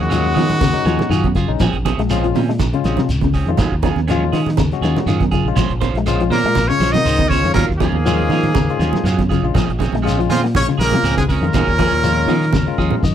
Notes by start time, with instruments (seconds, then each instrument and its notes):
0.00 fingered electric bass D#2, bass trombone F#2, tenor saxophone G#3, trumpet F#4, snare
0.09 clean electric guitar F3 F#3 C#4 F4 G#4, tine electric piano G#3 C#4 F#4, closed hi-hat, shekere
0.34 fingered electric bass D#3, clean electric guitar F3 C#4 F4 G#4, open hi-hat, high conga, shekere
0.50 low conga
0.61 fingered electric bass D#2, clean electric guitar C#3, kick, snare, closed hi-hat, high conga, shekere
0.73 tine electric piano G#3 C#4 D#4, closed hi-hat
0.85 fingered electric bass D#2, clean electric guitar F3 C#4 F4 G#4, snare, closed hi-hat, shekere
0.99 snare, low conga
1.10 fingered electric bass F#2, clean electric guitar D#3 C#4 F4 G#4, muted clean electric guitar stroke, closed hi-hat, shekere
1.24 kick, closed hi-hat, high conga
1.35 clean electric guitar C#3 F4 G#4, muted clean electric guitar stroke, kick, snare, closed hi-hat, shekere
1.48 fingered electric bass A#1, tine electric piano G#3 C#4 D#4
1.60 fingered electric bass A#1, clean electric guitar F3 C4 C#4 G#4, kick, snare, closed hi-hat, low conga, shekere
1.73 fingered electric bass A#1, kick, closed hi-hat
1.85 clean electric guitar C4 C#4 G#4, kick, snare, closed hi-hat, high conga, shekere
1.98 fingered electric bass A#1, clean electric guitar G#3, snare, closed hi-hat
2.10 clean electric guitar F3 C4 G#4, tine electric piano G#3 C#4 F4, snare, closed hi-hat, shekere
2.24 clean electric guitar F3, closed hi-hat
2.35 fingered electric bass A#2, clean electric guitar C4 C#4, open hi-hat, high conga, shekere
2.49 clean electric guitar G#3, snare
2.59 fingered electric bass A#1, kick, closed hi-hat, high conga, shekere
2.73 clean electric guitar C#3, tine electric piano G#3 C#4 F4, closed hi-hat
2.84 fingered electric bass A#1, clean electric guitar C4 C#4 G#4, snare, closed hi-hat, shekere
2.97 clean electric guitar C3, snare, closed hi-hat, low conga
3.09 fingered electric bass C#2, closed hi-hat, shekere
3.21 clean electric guitar C#3, kick, snare, closed hi-hat, high conga
3.34 clean electric guitar C4 C#4 G#4, kick, open hi-hat, shekere
3.46 fingered electric bass F2, clean electric guitar D#3, tine electric piano G#3 C#4 F4, closed hi-hat
3.57 fingered electric bass D#2, clean electric guitar F#3 C#4 F4 G#4, kick, closed hi-hat, low conga, shekere
3.72 fingered electric bass D#2, kick
3.82 clean electric guitar F3 C#4 F4 G#4, kick, closed hi-hat, high conga, shekere
3.96 fingered electric bass D#2, snare, high conga
4.08 clean electric guitar F3 F#3 C#4 F4 G#4, tine electric piano G#3 C#4 F4, snare, closed hi-hat, shekere
4.32 fingered electric bass D#3, clean electric guitar C#4 G#4, muted clean electric guitar stroke, snare, open hi-hat, high conga, shekere
4.46 snare, low conga
4.57 fingered electric bass D#2, clean electric guitar C#3, kick, closed hi-hat, high conga, shekere
4.71 tine electric piano G#3 C#4 F#4, snare, closed hi-hat
4.81 fingered electric bass D#2, clean electric guitar D#3 C#4 F4 G#4, snare, closed hi-hat, shekere
4.97 snare, low conga
5.06 fingered electric bass F#2, clean electric guitar D#3 F#3 C#4 F4 G#4, closed hi-hat, shekere
5.20 kick, snare, closed hi-hat, high conga
5.31 clean electric guitar C#3 F4 G#4, muted clean electric guitar stroke, kick, closed hi-hat, shekere
5.45 fingered electric bass A#1, tine electric piano G#3 C#4 F4
5.56 fingered electric bass A#1, clean electric guitar F3 G#3 C#4 F4 C5, kick, snare, closed hi-hat, low conga, shekere
5.69 fingered electric bass A#1, kick, closed hi-hat
5.81 clean electric guitar C#4 F4 C5, kick, closed hi-hat, high conga, shekere
5.94 fingered electric bass A#1, clean electric guitar G#3, snare, closed hi-hat
6.06 clean electric guitar G#3 F4 C5, tine electric piano G#3 C#4 F4, muted clean electric guitar stroke, closed hi-hat, shekere
6.20 clean electric guitar F3, closed hi-hat
6.30 fingered electric bass A#2, bass trombone A#2, tenor saxophone A#3, clean electric guitar C#4 F4 C5, trumpet A#4, snare, open hi-hat, high conga, shekere
6.44 clean electric guitar G#3, low conga
6.55 fingered electric bass A#1, kick, closed hi-hat, high conga, shekere
6.67 clean electric guitar C#3, tine electric piano G#3 C#4 F4, tenor saxophone C#4, trumpet C#5, closed hi-hat
6.71 bass trombone C#3
6.80 fingered electric bass A#1, clean electric guitar C#4 F4 C5, snare, closed hi-hat, shekere
6.92 clean electric guitar C3, bass trombone D#3, tenor saxophone D#4, trumpet D#5, snare, closed hi-hat, low conga
7.05 fingered electric bass C#2, clean electric guitar G#3 C#4 F4 C5, closed hi-hat, shekere
7.18 muted clean electric guitar stroke, kick, snare, closed hi-hat, high conga
7.28 bass trombone C#3, tenor saxophone C#4, clean electric guitar C#4 F4 C5, trumpet C#5, kick, open hi-hat, high conga
7.32 shekere
7.43 fingered electric bass F2, clean electric guitar D#3, tine electric piano G#3 C#4 F4, snare, closed hi-hat
7.53 fingered electric bass D#2, bass trombone A#2, clean electric guitar F#3 F4, tenor saxophone C#4, trumpet A#4, muted clean electric guitar stroke, kick, closed hi-hat, low conga, shekere
7.69 fingered electric bass D#2, kick, snare
7.78 bass trombone G#2, clean electric guitar F3 C#4 F4 G#4, tenor saxophone A#3, trumpet G#4, kick, closed hi-hat, high conga
7.83 snare, shekere
7.92 fingered electric bass D#2, high conga
8.06 clean electric guitar F3 F#3 C#4 F4 G#4, tine electric piano G#3 C#4 F4, closed hi-hat, shekere
8.29 fingered electric bass D#3, clean electric guitar F3 C#4 F4 G#4, open hi-hat, high conga, shekere
8.43 low conga
8.55 fingered electric bass D#2, clean electric guitar C#3, kick, closed hi-hat, high conga, shekere
8.70 tine electric piano G#3 C#4 F4, closed hi-hat
8.79 fingered electric bass D#2, clean electric guitar C#4 F4 G#4, snare, closed hi-hat, shekere
8.93 snare, low conga
9.04 fingered electric bass F#2, clean electric guitar F#3 C#4 F4 G#4, muted clean electric guitar stroke, closed hi-hat, shekere
9.19 kick, snare, closed hi-hat, high conga
9.29 clean electric guitar C#3 C#4 F4 G#4, kick, closed hi-hat, shekere
9.42 fingered electric bass A#1, tine electric piano G#3 C#4 F4
9.54 fingered electric bass A#1, clean electric guitar F3 C4 C#4 G#4, kick, closed hi-hat, low conga, shekere
9.69 fingered electric bass A#1, kick, closed hi-hat
9.79 clean electric guitar C4 C#4 G#4, kick, closed hi-hat, high conga
9.84 shekere
9.92 fingered electric bass A#1, clean electric guitar G#3, snare, closed hi-hat, high conga
10.02 clean electric guitar F3 C4 C#4 G#4, tine electric piano G#3 C#4 F4
10.07 closed hi-hat, shekere
10.19 clean electric guitar F3, closed hi-hat
10.30 bass trombone F2, fingered electric bass A#2, tenor saxophone F3, clean electric guitar C4 C#4 G#4, trumpet F4, open hi-hat, high conga, shekere
10.44 clean electric guitar A#3, snare
10.55 fingered electric bass A#1, bass trombone C#3, tenor saxophone C#4, trumpet C#5, kick, closed hi-hat, high conga, shekere
10.68 clean electric guitar C#3, tine electric piano G#3 C#4 F4, snare, closed hi-hat
10.78 fingered electric bass A#1, bass trombone A#2, clean electric guitar C4 C#4 G#4, trumpet A#4, snare, closed hi-hat, shekere
10.83 tenor saxophone A#3
10.91 clean electric guitar C3, snare, closed hi-hat, low conga
11.03 fingered electric bass C#2, clean electric guitar F3 C4 C#4 G#4, closed hi-hat, shekere
11.17 bass trombone G#2, clean electric guitar C#3, tenor saxophone G#3, trumpet G#4, kick, snare, closed hi-hat, high conga
11.29 bass trombone A#2, clean electric guitar C4 C#4 G#4, tenor saxophone C#4, trumpet A#4, kick, open hi-hat, shekere
11.41 fingered electric bass F2, clean electric guitar D#3, tine electric piano G#3 C#4 F4, closed hi-hat
11.54 fingered electric bass D#2, clean electric guitar F#3 C#4 F4 G#4, kick, closed hi-hat, low conga, shekere
11.67 fingered electric bass D#2, kick
11.79 clean electric guitar F3 C#4 F4 G#4, kick, snare, closed hi-hat, high conga, shekere
11.91 fingered electric bass D#2, high conga
12.03 clean electric guitar F3, tine electric piano G#3 C#4 F4, closed hi-hat, shekere
12.27 fingered electric bass D#3, clean electric guitar F3 C#4 F4 G#4, open hi-hat, high conga, shekere
12.43 snare
12.53 fingered electric bass D#2, clean electric guitar C#3, kick, snare, high conga, shekere
12.66 tine electric piano G#3 C#4 F4
12.78 fingered electric bass D#2, clean electric guitar F3 C#4 F4 G#4, tine electric piano F5, kick, shekere
12.91 mid tom, low conga
13.03 fingered electric bass F#2, clean electric guitar D#3, tine electric piano D#5, kick, shekere